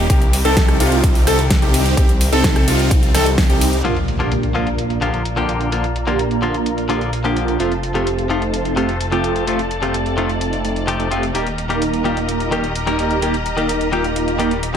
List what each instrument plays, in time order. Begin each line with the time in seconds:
Already playing: string section D#3 G3 G4
0.10 detuned saw bass C2, string section C4, supersaw synth C4 D#4 G4, grand piano G4, kick, closed hi-hat, ride
0.22 closed hi-hat
0.33 open hi-hat, ride
0.45 detuned saw bass C2, supersaw synth C4 D#4 A4, grand piano A4, closed hi-hat
0.57 kick, snare, closed hi-hat, ride
0.68 cross-stick, closed hi-hat
0.80 detuned saw bass C2, supersaw synth C4 D#4 F4, grand piano F4, open hi-hat, ride
0.92 closed hi-hat
1.04 kick, closed hi-hat, ride
1.15 open hi-hat
1.27 detuned saw bass C2, supersaw synth C4 D#4 A4, grand piano A4, cross-stick, open hi-hat, ride
1.39 closed hi-hat
1.50 kick, snare, closed hi-hat, ride
1.62 detuned saw bass C2, supersaw synth C4 D#4 G4, grand piano G4, closed hi-hat
1.74 open hi-hat, ride
1.86 closed hi-hat
1.97 detuned saw bass C2, supersaw synth C4 D#4 G4, grand piano G4, kick, closed hi-hat, ride
2.09 closed hi-hat
2.21 open hi-hat, ride
2.32 detuned saw bass C2, supersaw synth C4 D#4 A4, grand piano A4, closed hi-hat
2.44 kick, snare, closed hi-hat, ride
2.56 cross-stick, closed hi-hat
2.68 detuned saw bass C2, supersaw synth C4 D#4 F4, grand piano F4, open hi-hat, ride
2.79 closed hi-hat
2.91 kick, closed hi-hat, ride
3.03 closed hi-hat
3.14 detuned saw bass C2, supersaw synth C4 D#4 A4, grand piano A4, cross-stick, snare, open hi-hat, ride
3.26 closed hi-hat
3.38 kick, snare, open hi-hat, ride
3.50 detuned saw bass C2, supersaw synth C4 D#4 G4, grand piano G4, closed hi-hat
3.61 open hi-hat, ride
3.73 closed hi-hat
3.84 detuned saw bass A#1, clean electric guitar D3 F3 A#3 F4, supersaw synth A#3 D4 F4, string section F4 A#4 D5 A#5, closed hi-hat, impact
3.97 closed hi-hat
4.08 closed hi-hat
4.19 clean electric guitar D3 F3 A#3 F4, supersaw synth A#3 D4 G4, closed hi-hat
4.32 closed hi-hat
4.43 closed hi-hat
4.54 clean electric guitar D3 F3 A#3 F4, supersaw synth A#3 D4 F4, closed hi-hat
4.67 closed hi-hat
4.79 closed hi-hat
4.90 closed hi-hat
5.01 clean electric guitar D3 F3 A#3 F4, supersaw synth A#3 D4 G4, closed hi-hat
5.14 closed hi-hat
5.25 closed hi-hat
5.36 clean electric guitar D3 F3 A#3 G4, supersaw synth A#3 D4 F4, closed hi-hat
5.49 closed hi-hat
5.61 closed hi-hat
5.72 clean electric guitar D3 F3 A#3 F4, supersaw synth A#3 D4 F4, closed hi-hat
5.84 closed hi-hat
5.96 closed hi-hat
6.07 clean electric guitar D3 F3 A#3 F4, supersaw synth A#3 D4 G4, closed hi-hat
6.19 closed hi-hat
6.31 closed hi-hat
6.42 clean electric guitar D3 F3 A#3 F4, supersaw synth A#3 D4 F4, closed hi-hat
6.54 closed hi-hat
6.66 closed hi-hat
6.78 closed hi-hat
6.89 clean electric guitar D3 F3 A#3 F4, supersaw synth A#3 D4 G4, closed hi-hat
7.01 closed hi-hat
7.13 closed hi-hat
7.24 clean electric guitar D3 F3 A#3 G4, supersaw synth A#3 D4 F4, closed hi-hat
7.36 closed hi-hat
7.48 closed hi-hat
7.59 detuned saw bass F1, clean electric guitar C3 F3 A3 F4, supersaw synth A3 C4 F4, string section A4 C5 A5, closed hi-hat
7.72 closed hi-hat
7.83 closed hi-hat
7.94 clean electric guitar C3 F3 A3 F4, supersaw synth A3 C4 G4, closed hi-hat
8.07 closed hi-hat
8.19 closed hi-hat
8.30 clean electric guitar C3 F3 A3 F4, supersaw synth A3 C4 D#4, closed hi-hat
8.42 closed hi-hat
8.54 closed hi-hat
8.65 closed hi-hat
8.76 clean electric guitar C3 F3 A3 F4, supersaw synth A3 C4 G4, closed hi-hat
8.89 closed hi-hat
9.01 closed hi-hat
9.12 clean electric guitar C3 F3 A3 G4, supersaw synth A3 C4 F4, closed hi-hat
9.24 closed hi-hat
9.36 closed hi-hat
9.47 clean electric guitar C3 F3 A3 F4, supersaw synth A3 C4 F4, string section D5, closed hi-hat
9.59 closed hi-hat
9.71 closed hi-hat
9.82 clean electric guitar C3 F3 A3 F4, supersaw synth A3 C4 G4, closed hi-hat
9.94 closed hi-hat
10.06 closed hi-hat
10.17 clean electric guitar C3 F3 A3 F4, supersaw synth A3 C4 D#4, closed hi-hat
10.29 closed hi-hat
10.41 closed hi-hat
10.53 closed hi-hat
10.65 supersaw synth A3 C4 D#4, closed hi-hat
10.76 closed hi-hat
10.87 clean electric guitar C3 F3 A3 G4, closed hi-hat
11.00 supersaw synth A3 C4 D#4, closed hi-hat
11.11 clean electric guitar C3 F3 A3 F4, supersaw synth A3 C4 G4, closed hi-hat
11.23 closed hi-hat
11.34 detuned saw bass D#1, clean electric guitar D#3 G3 A#3 G4, supersaw synth A#3 D#4 G4, string section G4 A#4 D#5 A#5, closed hi-hat
11.47 closed hi-hat
11.58 closed hi-hat
11.69 clean electric guitar D#3 G3 A#3 G4, supersaw synth A#3 D#4 A#4, closed hi-hat
11.82 closed hi-hat
11.94 closed hi-hat
12.04 clean electric guitar D#3 G3 A#3 G4, supersaw synth A#3 D#4 F4, closed hi-hat
12.17 closed hi-hat
12.29 closed hi-hat
12.40 closed hi-hat
12.51 clean electric guitar D#3 G3 A#3 G4, supersaw synth A#3 D#4 A#4, closed hi-hat
12.64 closed hi-hat
12.76 closed hi-hat
12.86 clean electric guitar D#3 G3 A#3 A#4, supersaw synth A#3 D#4 G4, closed hi-hat
12.99 closed hi-hat
13.11 closed hi-hat
13.22 clean electric guitar D#3 G3 A#3 G4, supersaw synth A#3 D#4 G4, closed hi-hat
13.34 closed hi-hat
13.46 closed hi-hat
13.57 clean electric guitar D#3 G3 A#3 G4, supersaw synth A#3 D#4 A#4, closed hi-hat
13.69 closed hi-hat
13.81 closed hi-hat
13.92 clean electric guitar D#3 G3 A#3 G4, supersaw synth A#3 D#4 F4, closed hi-hat
14.04 closed hi-hat
14.16 closed hi-hat
14.28 closed hi-hat
14.39 clean electric guitar D#3 G3 A#3 G4, supersaw synth A#3 D#4 A#4, closed hi-hat
14.51 closed hi-hat
14.63 closed hi-hat